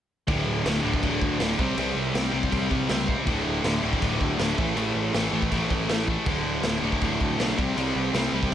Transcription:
0.28 picked electric bass D1, overdriven electric guitar D2 A2 D3, kick, crash
0.46 picked electric bass D1
0.65 picked electric bass D1, overdriven electric guitar D2 A2 D3, snare, crash
0.84 picked electric bass D1, overdriven electric guitar D2 A2 D3
0.94 kick
1.02 picked electric bass D1, overdriven electric guitar D2 A2 D3, kick, crash
1.21 picked electric bass D2, kick
1.40 picked electric bass D1, overdriven electric guitar D2 A2 D3, snare, crash
1.59 picked electric bass C2, overdriven electric guitar C3 G3 C4, kick
1.77 picked electric bass C2, overdriven electric guitar C3 G3 C4, crash
1.96 picked electric bass C2
2.14 picked electric bass C2, overdriven electric guitar C3 G3 C4, snare, crash
2.32 picked electric bass C2, overdriven electric guitar C3 G3 C4
2.43 kick
2.51 picked electric bass C2, overdriven electric guitar C3 G3 C4, kick, crash
2.69 picked electric bass C2, distorted electric guitar G3 C4, kick
2.74 distorted electric guitar C3
2.89 picked electric bass C#2, overdriven electric guitar C3 G3 C4, snare, crash
3.08 overdriven electric guitar C3 G3 C4, kick
3.26 picked electric bass D1, overdriven electric guitar D2 A2 D3, kick, crash
3.46 picked electric bass D1
3.63 picked electric bass D1, overdriven electric guitar D2 A2 D3, snare, crash
3.82 picked electric bass D1, overdriven electric guitar D2 A2 D3
3.93 kick
4.02 picked electric bass D1, overdriven electric guitar D2 A2 D3, kick, crash
4.20 picked electric bass D2, kick
4.39 picked electric bass D1, overdriven electric guitar D2 A2 D3, snare, crash
4.58 picked electric bass A1, overdriven electric guitar A2 E3 A3, kick
4.76 picked electric bass A1, overdriven electric guitar A2 E3 A3, crash
4.95 picked electric bass A1
5.13 picked electric bass A1, overdriven electric guitar A2 E3 A3, snare, crash
5.32 picked electric bass A1, overdriven electric guitar A2 E3 A3
5.42 kick
5.51 picked electric bass A1, overdriven electric guitar A2 E3 A3, kick, crash
5.69 picked electric bass A1, distorted electric guitar A2 E3 A3, kick
5.88 picked electric bass A1, overdriven electric guitar A2 E3 A3, snare, crash
6.08 overdriven electric guitar A2 E3 A3, kick
6.26 picked electric bass D1, overdriven electric guitar D2 A2 D3, kick, crash
6.44 picked electric bass D1
6.63 picked electric bass D1, overdriven electric guitar D2 A2 D3, snare, crash
6.82 picked electric bass D1, overdriven electric guitar D2 A2 D3
6.92 kick
7.01 picked electric bass D1, overdriven electric guitar D2 A2 D3, kick, crash
7.21 picked electric bass D2, kick
7.38 picked electric bass B1, overdriven electric guitar D2 A2 D3, snare, crash
7.58 picked electric bass C2, overdriven electric guitar C3 G3 C4, kick
7.77 picked electric bass C2, overdriven electric guitar C3 G3 C4, crash
7.96 picked electric bass C2
8.13 picked electric bass C2, overdriven electric guitar C3 G3 C4, snare, crash
8.33 picked electric bass C2, overdriven electric guitar C3 G3 C4
8.43 kick

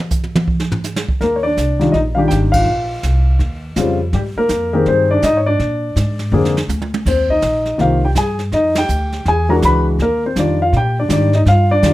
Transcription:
0.11 kick, hi-hat pedal
0.24 mid tom
0.36 mid tom
0.48 kick
0.60 snare
0.72 floor tom
0.84 snare, hi-hat pedal
0.96 snare
1.09 kick
1.21 upright bass D#2, upright piano A#3 A#4, brush sweep, kick, snare
1.36 upright piano C#5
1.43 upright piano D4 D5
1.57 upright bass C2, kick, snare, hi-hat pedal
1.79 upright piano D#3 G3 D4 F4, snare
1.92 upright bass A#1, upright piano D#4 D#5, brush sweep, kick, snare
2.15 upright piano D#3 G3 D4 G4 F5
2.19 upright piano F4
2.28 upright bass G#1, upright piano G5, kick, snare, hi-hat pedal
2.33 upright piano G4
2.52 upright piano F5, kick, ride
2.56 upright piano F4
2.66 upright bass A#1, brush sweep
3.03 upright bass C2, kick, snare, hi-hat pedal
3.39 upright bass D#2, brush sweep, kick, snare
3.76 upright bass F2, upright piano C#3 G3 C4 F4, kick, snare, hi-hat pedal
4.13 upright bass G#2, upright piano G3 G4, brush sweep, kick, snare
4.36 upright piano A#3 A#4, muted upright bass stroke
4.49 upright bass F2, kick, snare, hi-hat pedal
4.73 upright piano D#3 A#3 C4 G4 G#4 A#4
4.86 upright bass G2, upright piano C4 C5, brush sweep, kick, snare
5.11 upright piano D4 D5
5.22 upright bass G#2, upright piano D#4 D#5, kick, snare, hi-hat pedal
5.37 upright piano C#5
5.46 upright piano D4 D5
5.59 upright bass A#2, brush sweep, kick, snare
5.96 upright bass G#2, kick, snare, hi-hat pedal
6.19 snare
6.32 upright bass F2, upright piano D3 A#3 C4 G#4
6.45 snare
6.57 snare
6.68 upright bass D2, hi-hat pedal, high tom
6.82 high tom
6.94 high tom
7.06 upright bass D#2, upright piano C4 C5, brush sweep, kick, snare, crash
7.29 upright piano D#4 D#5, kick
7.42 upright bass A#1, snare, hi-hat pedal
7.65 snare
7.78 upright bass C2, upright piano D#3 A#3 C4 F4 G4 F5, brush sweep, kick, snare
8.05 upright piano G4 G5
8.15 upright bass G2, upright piano G#4 G#5, kick, snare, hi-hat pedal
8.39 snare
8.52 upright bass F2, upright piano D#4 D#5, brush sweep, kick, snare
8.75 upright piano G4 G5, snare, ride
8.89 upright bass D2, hi-hat pedal
9.12 snare
9.25 upright bass E2, upright piano G#4 G#5, brush sweep, kick, snare
9.49 upright piano E3 G#3 D4 F#4 A#4 A#5
9.62 upright bass C#2, upright piano B4 B5, kick, snare, hi-hat pedal
9.99 upright bass D#2, upright piano A#3 A#4, brush sweep, kick, snare
10.26 upright piano C4 C5
10.36 upright bass F2, upright piano D#3 G3 D4 F4 D5, kick, snare, hi-hat pedal
10.62 upright piano F4 F5
10.73 upright bass A#2, brush sweep, kick, snare
10.77 upright piano G4 G5
11.00 upright piano D4 D5
11.09 upright bass G#2, upright piano D#3 G3 D4 G4, kick, snare, hi-hat pedal
11.13 upright piano D5
11.33 upright piano D#4 D#5, snare
11.46 upright bass G2, upright piano F4 F5, brush sweep, kick, snare
11.71 upright piano D4 D5
11.82 upright bass F2, upright piano D#3 G3 D4 F4, kick, snare, hi-hat pedal

